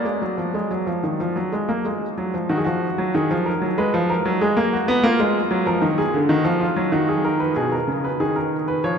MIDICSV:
0, 0, Header, 1, 2, 480
1, 0, Start_track
1, 0, Key_signature, -6, "minor"
1, 0, Tempo, 650054
1, 1845, Time_signature, 4, 2, 24, 8
1, 2318, Tempo, 628272
1, 5198, Tempo, 641026
1, 6752, End_track
2, 0, Start_track
2, 0, Title_t, "Grand piano"
2, 0, Program_c, 0, 0
2, 0, Note_on_c, 0, 74, 60
2, 36, Note_on_c, 0, 56, 51
2, 155, Note_off_c, 0, 56, 0
2, 159, Note_on_c, 0, 54, 57
2, 277, Note_off_c, 0, 54, 0
2, 278, Note_on_c, 0, 53, 57
2, 396, Note_off_c, 0, 53, 0
2, 400, Note_on_c, 0, 56, 54
2, 518, Note_off_c, 0, 56, 0
2, 522, Note_on_c, 0, 54, 55
2, 639, Note_off_c, 0, 54, 0
2, 640, Note_on_c, 0, 53, 59
2, 758, Note_off_c, 0, 53, 0
2, 764, Note_on_c, 0, 51, 54
2, 881, Note_off_c, 0, 51, 0
2, 887, Note_on_c, 0, 53, 61
2, 1002, Note_off_c, 0, 53, 0
2, 1002, Note_on_c, 0, 54, 61
2, 1120, Note_off_c, 0, 54, 0
2, 1125, Note_on_c, 0, 56, 62
2, 1241, Note_off_c, 0, 56, 0
2, 1244, Note_on_c, 0, 58, 61
2, 1361, Note_off_c, 0, 58, 0
2, 1366, Note_on_c, 0, 56, 57
2, 1514, Note_off_c, 0, 56, 0
2, 1576, Note_off_c, 0, 74, 0
2, 1606, Note_on_c, 0, 54, 59
2, 1722, Note_off_c, 0, 54, 0
2, 1728, Note_on_c, 0, 53, 56
2, 1842, Note_on_c, 0, 51, 71
2, 1842, Note_on_c, 0, 66, 68
2, 1843, Note_off_c, 0, 53, 0
2, 1894, Note_off_c, 0, 66, 0
2, 1900, Note_on_c, 0, 68, 56
2, 1951, Note_off_c, 0, 68, 0
2, 1952, Note_on_c, 0, 66, 66
2, 1959, Note_off_c, 0, 51, 0
2, 1967, Note_on_c, 0, 53, 66
2, 2113, Note_off_c, 0, 53, 0
2, 2202, Note_on_c, 0, 54, 69
2, 2309, Note_off_c, 0, 66, 0
2, 2316, Note_off_c, 0, 54, 0
2, 2321, Note_on_c, 0, 68, 59
2, 2322, Note_on_c, 0, 51, 81
2, 2439, Note_off_c, 0, 51, 0
2, 2446, Note_on_c, 0, 53, 77
2, 2471, Note_off_c, 0, 68, 0
2, 2560, Note_on_c, 0, 70, 57
2, 2595, Note_off_c, 0, 53, 0
2, 2681, Note_on_c, 0, 54, 73
2, 2710, Note_off_c, 0, 70, 0
2, 2799, Note_off_c, 0, 54, 0
2, 2806, Note_on_c, 0, 56, 80
2, 2806, Note_on_c, 0, 71, 72
2, 2922, Note_off_c, 0, 56, 0
2, 2929, Note_on_c, 0, 53, 90
2, 2954, Note_off_c, 0, 71, 0
2, 3047, Note_on_c, 0, 70, 62
2, 3076, Note_off_c, 0, 53, 0
2, 3170, Note_on_c, 0, 54, 85
2, 3196, Note_off_c, 0, 70, 0
2, 3284, Note_off_c, 0, 54, 0
2, 3292, Note_on_c, 0, 56, 83
2, 3292, Note_on_c, 0, 68, 66
2, 3405, Note_off_c, 0, 56, 0
2, 3408, Note_on_c, 0, 58, 81
2, 3439, Note_off_c, 0, 68, 0
2, 3533, Note_on_c, 0, 66, 70
2, 3556, Note_off_c, 0, 58, 0
2, 3649, Note_on_c, 0, 59, 94
2, 3679, Note_off_c, 0, 66, 0
2, 3763, Note_off_c, 0, 59, 0
2, 3767, Note_on_c, 0, 58, 98
2, 3767, Note_on_c, 0, 65, 79
2, 3881, Note_off_c, 0, 58, 0
2, 3890, Note_on_c, 0, 56, 76
2, 4035, Note_off_c, 0, 56, 0
2, 4127, Note_on_c, 0, 54, 82
2, 4227, Note_off_c, 0, 65, 0
2, 4239, Note_off_c, 0, 54, 0
2, 4247, Note_on_c, 0, 53, 80
2, 4249, Note_on_c, 0, 70, 68
2, 4359, Note_off_c, 0, 53, 0
2, 4364, Note_on_c, 0, 51, 77
2, 4394, Note_off_c, 0, 70, 0
2, 4487, Note_on_c, 0, 68, 73
2, 4511, Note_off_c, 0, 51, 0
2, 4610, Note_on_c, 0, 50, 77
2, 4633, Note_off_c, 0, 68, 0
2, 4721, Note_off_c, 0, 50, 0
2, 4726, Note_on_c, 0, 51, 94
2, 4728, Note_on_c, 0, 66, 67
2, 4839, Note_off_c, 0, 51, 0
2, 4845, Note_on_c, 0, 53, 84
2, 4874, Note_off_c, 0, 66, 0
2, 4962, Note_on_c, 0, 65, 67
2, 4993, Note_off_c, 0, 53, 0
2, 5087, Note_on_c, 0, 54, 78
2, 5111, Note_off_c, 0, 65, 0
2, 5200, Note_off_c, 0, 54, 0
2, 5207, Note_on_c, 0, 51, 78
2, 5207, Note_on_c, 0, 66, 65
2, 5318, Note_off_c, 0, 66, 0
2, 5331, Note_on_c, 0, 68, 64
2, 5441, Note_off_c, 0, 68, 0
2, 5450, Note_on_c, 0, 70, 62
2, 5560, Note_off_c, 0, 70, 0
2, 5566, Note_on_c, 0, 71, 65
2, 5667, Note_off_c, 0, 51, 0
2, 5678, Note_off_c, 0, 71, 0
2, 5686, Note_on_c, 0, 68, 67
2, 5687, Note_on_c, 0, 47, 61
2, 5798, Note_off_c, 0, 68, 0
2, 5804, Note_on_c, 0, 70, 59
2, 5833, Note_off_c, 0, 47, 0
2, 5921, Note_on_c, 0, 49, 55
2, 5951, Note_off_c, 0, 70, 0
2, 6048, Note_on_c, 0, 71, 54
2, 6069, Note_off_c, 0, 49, 0
2, 6159, Note_off_c, 0, 71, 0
2, 6166, Note_on_c, 0, 51, 59
2, 6166, Note_on_c, 0, 68, 65
2, 6278, Note_off_c, 0, 68, 0
2, 6284, Note_on_c, 0, 70, 55
2, 6431, Note_off_c, 0, 70, 0
2, 6523, Note_on_c, 0, 71, 64
2, 6629, Note_off_c, 0, 51, 0
2, 6637, Note_off_c, 0, 71, 0
2, 6644, Note_on_c, 0, 53, 63
2, 6645, Note_on_c, 0, 73, 71
2, 6752, Note_off_c, 0, 53, 0
2, 6752, Note_off_c, 0, 73, 0
2, 6752, End_track
0, 0, End_of_file